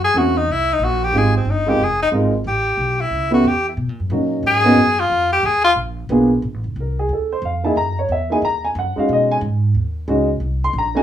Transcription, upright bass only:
0.00 0.13 F#2 medium
0.14 0.46 E2 medium
0.47 0.79 C2 medium
0.79 1.12 A#1 medium
1.12 1.44 G#1 medium
1.45 1.78 G1 medium
1.78 2.11 F1 medium
2.12 2.44 G#1 medium
2.44 2.77 A1 medium
2.77 3.10 B1 medium
3.11 3.43 C#2 medium
3.44 3.76 E2 medium
3.77 3.89 B2 medium
3.89 3.99 A#2 medium
4.00 4.09 F#2 medium
4.10 4.42 A#2 loud
4.43 4.75 G#2 medium
4.76 5.09 F#2 medium
5.10 5.42 F2 medium
5.43 5.75 D#2 loud
5.75 6.08 A#1 medium
6.09 6.42 B1 loud
6.42 6.54 A#1 medium
6.54 6.63 A1 medium
6.64 6.75 F1 medium
6.76 7.08 C2 medium
7.09 7.41 D2 medium
7.42 7.74 F2 medium
7.76 8.08 F#2 medium
8.09 8.41 E2 medium
8.42 8.74 D#2 medium
8.75 8.95 F#2 loud
8.97 muted upright bass stroke soft
9.09 9.41 B2 medium
9.41 9.74 G#2 loud
9.75 10.07 D#2 medium
10.08 10.39 C#2 medium
10.40 10.73 C2 medium
10.73 11.03 A#1 medium

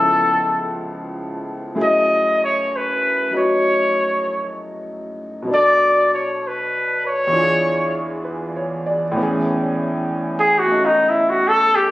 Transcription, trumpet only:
0.00 0.83 A4 medium
1.82 2.39 D#5 loud
2.44 2.78 C#5 medium
2.76 3.36 B4 medium
3.37 4.53 C#5 medium
5.54 6.11 D5 loud
6.14 6.49 C#5 medium
6.48 7.06 B4 medium
7.07 8.22 C#5 loud
10.40 10.60 G#4 medium
10.59 10.87 F#4 medium
10.86 11.10 D#4 medium
11.09 11.31 E4 medium
11.30 11.50 F#4 medium
11.48 11.77 A4 loud
11.75 11.91 G4 medium

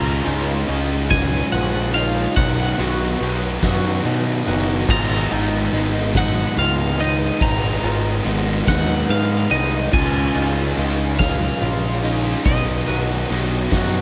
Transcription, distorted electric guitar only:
0.00 0.23 C#3 loud
0.00 0.24 G#3 loud
0.00 0.25 C#4 loud
0.00 0.25 F4 loud
0.24 0.66 C#3 loud
0.24 0.67 G#3 loud
0.24 0.67 C#4 loud
0.24 0.68 F4 loud
0.67 1.09 C#3 loud
0.67 1.09 G#3 loud
0.67 1.10 C#4 loud
0.67 1.11 F4 loud
1.10 1.93 C#3 loud
1.10 1.94 G#3 loud
1.10 1.94 C#4 loud
1.10 1.95 F4 loud
1.95 2.34 C#3 medium
1.95 2.34 G#3 medium
1.95 2.35 C#4 medium
1.95 2.35 F4 loud
2.35 2.77 B2 loud
2.35 2.78 D#3 loud
2.35 2.78 F#3 loud
2.35 2.80 B3 loud
2.35 2.80 D#4 loud
2.78 3.19 B2 loud
2.78 3.20 D#3 loud
2.78 3.20 F#3 loud
2.78 3.21 B3 loud
2.78 3.22 D#4 loud
3.20 3.62 B2 loud
3.20 3.62 D#3 medium
3.20 3.62 F#3 medium
3.20 3.64 B3 medium
3.20 3.65 D#4 loud
3.63 4.44 B2 medium
3.63 4.45 D#3 medium
3.63 4.45 F#3 loud
3.63 4.47 B3 loud
3.63 4.47 D#4 loud
4.46 4.86 B2 medium
4.46 4.86 D#3 medium
4.46 4.86 F#3 medium
4.46 4.88 B3 medium
4.46 4.89 D#4 loud
4.87 5.29 G#2 medium
4.87 5.29 D#3 loud
4.87 5.31 G#3 loud
4.87 5.31 B3 loud
4.87 5.31 D#4 loud
5.29 5.72 G#2 medium
5.29 5.71 D#3 loud
5.29 5.73 G#3 medium
5.29 5.73 B3 loud
5.29 5.74 D#4 loud
5.72 6.12 G#2 medium
5.72 6.13 D#3 loud
5.72 6.14 G#3 loud
5.72 6.14 B3 loud
5.72 6.15 D#4 loud
6.14 6.97 G#2 loud
6.14 6.98 D#3 loud
6.14 6.99 G#3 loud
6.14 6.99 B3 loud
6.14 7.00 D#4 loud
6.98 7.39 G#2 medium
6.98 7.40 D#3 medium
6.98 7.42 G#3 medium
6.98 7.41 B3 loud
6.98 7.42 D#4 loud
7.40 7.81 G#2 medium
7.40 7.82 D#3 loud
7.40 7.83 G#3 loud
7.40 7.83 B3 loud
7.40 7.85 D#4 loud
7.83 8.23 G#2 medium
7.83 8.23 D#3 loud
7.83 8.25 G#3 loud
7.83 8.24 B3 loud
7.83 8.26 D#4 loud
8.24 8.65 G#2 medium
8.24 8.65 D#3 medium
8.24 8.66 G#3 loud
8.24 8.67 B3 loud
8.24 8.68 D#4 loud
8.66 9.50 G#2 medium
8.66 9.50 D#3 medium
8.66 9.51 G#3 loud
8.66 9.52 B3 loud
8.66 9.53 D#4 loud
9.51 9.91 G#2 medium
9.51 9.91 D#3 medium
9.51 9.91 G#3 loud
9.51 9.92 B3 medium
9.51 9.94 D#4 medium
9.93 10.34 C#3 loud
9.93 10.35 G#3 loud
9.93 10.35 C#4 loud
9.93 10.36 F4 loud
10.36 10.76 C#3 medium
10.36 10.77 G#3 loud
10.36 10.78 C#4 loud
10.36 10.78 F4 loud
10.77 11.18 C#3 medium
10.77 11.19 G#3 loud
10.77 11.19 C#4 loud
10.77 11.19 F4 loud
11.19 12.02 C#3 medium
11.19 12.03 G#3 loud
11.19 12.03 C#4 loud
11.19 12.04 F4 loud
12.03 12.43 C#3 medium
12.03 12.44 G#3 medium
12.03 12.44 C#4 medium
12.03 12.44 F4 loud
12.45 12.86 B2 loud
12.45 12.87 D#3 medium
12.45 12.87 F#3 loud
12.45 12.89 B3 loud
12.45 12.89 D#4 loud
12.87 13.29 B2 medium
12.87 13.30 D#3 loud
12.87 13.30 F#3 medium
12.87 13.32 B3 loud
12.87 13.32 D#4 loud
13.30 13.71 B2 medium
13.30 13.72 D#3 medium
13.30 13.72 F#3 medium
13.30 13.74 B3 loud
13.30 13.74 D#4 loud
13.72 14.01 B2 loud
13.72 14.01 D#3 medium
13.72 14.01 F#3 loud
13.72 14.01 B3 loud
13.72 14.01 D#4 loud

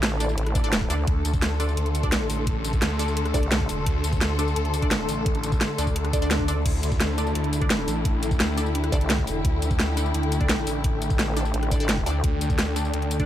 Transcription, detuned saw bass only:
1.07 1.23 D2 loud
1.25 1.76 D2 loud
1.77 2.28 D2 loud
2.30 2.80 A1 loud
2.82 3.33 D2 loud
3.69 3.85 E1 loud
3.86 4.03 D2 loud
4.04 4.55 D2 medium
4.56 5.07 D2 loud
5.09 5.60 A1 loud
5.78 6.12 D2 loud
6.13 6.64 D2 medium
6.66 6.82 D2 loud
6.83 7.34 D2 loud
7.35 7.86 D2 loud
7.88 8.39 A1 loud
8.40 8.91 D2 loud
9.27 9.43 E1 loud
9.45 9.61 D2 loud
9.62 10.13 D2 medium
10.14 10.65 D2 loud
10.67 11.18 A1 loud
12.24 12.40 D2 loud
12.41 12.92 D2 loud
12.94 13.26 D2 medium

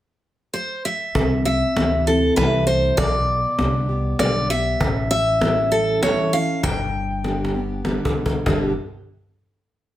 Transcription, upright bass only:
1.15 1.60 C2 medium
1.76 2.28 D2 medium
2.37 2.89 C2 medium
2.98 3.42 B1 medium
3.59 4.11 C2 medium
4.20 4.72 B1 medium
4.81 6.14 A1 medium
6.63 7.97 G1 medium
8.46 8.75 G1 medium

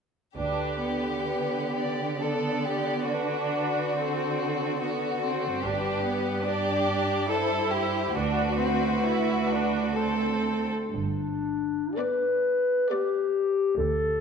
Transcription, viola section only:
0.38 0.80 D4 soft
0.85 2.21 B3 soft
2.22 3.07 B3 soft
3.09 3.97 D4 soft
3.98 4.80 C4 soft
4.82 5.22 B3 soft
5.22 5.63 C4 soft
5.64 6.06 D4 soft
6.05 6.46 B3 soft
6.47 7.30 D4 soft
7.29 8.14 E4 soft
8.14 8.58 D4 soft
8.59 9.03 C4 soft
9.04 9.49 E4 soft
9.50 9.96 D4 soft
9.96 10.71 C4 soft
11.97 12.68 B3 soft
12.90 13.56 B3 soft

